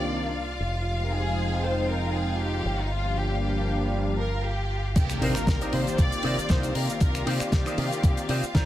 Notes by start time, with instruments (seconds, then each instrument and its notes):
Already playing: fingered electric bass C2, string section F4 F5, violin section D5
0.08 analog synth pad D#3 A#3 C4 D4 A#4
0.60 fingered electric bass F1
0.85 analog synth pad F3 G#3 C4 D#4 G4
1.05 violin section A#4
1.11 violin section G#4
1.24 analog synth pad F3 G#3 C4 D#4 G5
1.63 violin section C5
1.88 violin section A#4
2.14 violin section G#4
2.40 violin section G4
2.65 fingered electric bass G1
2.79 violin section D#4
2.90 analog synth pad F3 G3 A#3 D4 G4, violin section F4
3.17 violin section G4
3.29 analog synth pad F3 G3 A#3 D4 G4
3.42 violin section G4
4.19 violin section A#4
4.45 violin section G4
4.96 fingered electric bass C2, analog synth pad D#3 A#3 C4 D4 G4, string section F4 F5, violin section G4, kick, closed hi-hat, crash, impact, cabasa
5.10 finger snap, closed hi-hat, cabasa
5.21 fingered electric bass C3, clean electric guitar D#4 A#4 C5 D5, violin section A#4, open hi-hat
5.35 analog synth pad D#3 A#3 C4 G4 D5, finger snap, muted fingered electric bass stroke, closed hi-hat, cabasa
5.47 fingered electric bass C2, muted clean electric guitar stroke, kick, snare, closed hi-hat, cabasa
5.61 clean electric guitar D#4 A#4 C5 D5, closed hi-hat, cabasa
5.73 fingered electric bass C3, violin section C5, open hi-hat
5.87 closed hi-hat, cabasa
5.98 fingered electric bass C2, violin section D5, kick, closed hi-hat, cabasa
6.12 closed hi-hat, cabasa
6.23 fingered electric bass C3, clean electric guitar D#4 A#4 C5 D5, open hi-hat
6.38 muted fingered electric bass stroke, closed hi-hat, cabasa
6.49 fingered electric bass C2, clean electric guitar D#4 A#4 C5 D5, violin section C5, kick, snare, closed hi-hat, cabasa
6.63 closed hi-hat, cabasa
6.75 fingered electric bass C3, violin section A#4, open hi-hat
6.89 muted clean electric guitar stroke, closed hi-hat, cabasa
7.00 fingered electric bass C2, analog synth pad D#3 A#3 C4 G4 D5, violin section A#4, kick, closed hi-hat, cabasa
7.15 finger snap, closed hi-hat, cabasa
7.26 fingered electric bass C3, clean electric guitar D#4 A#4 C5 D5, violin section G4, open hi-hat
7.40 analog synth pad D#3 A#3 C4 G4 D5, finger snap, muted fingered electric bass stroke, closed hi-hat, cabasa
7.52 fingered electric bass C2, violin section G4, muted clean electric guitar stroke, kick, snare, closed hi-hat, cabasa
7.66 clean electric guitar D#4 A#4 C5 D5, finger snap, closed hi-hat, cabasa
7.78 fingered electric bass C3, open hi-hat
7.92 closed hi-hat, cabasa
8.03 fingered electric bass C2, muted clean electric guitar stroke, kick, closed hi-hat, cabasa
8.17 closed hi-hat, cabasa
8.29 fingered electric bass C3, clean electric guitar D#4 A#4 C5 D5, open hi-hat
8.43 muted fingered electric bass stroke, closed hi-hat, cabasa
8.54 fingered electric bass C2, clean electric guitar D#4 A#4 C5 D5 A#5, kick, snare, closed hi-hat, cabasa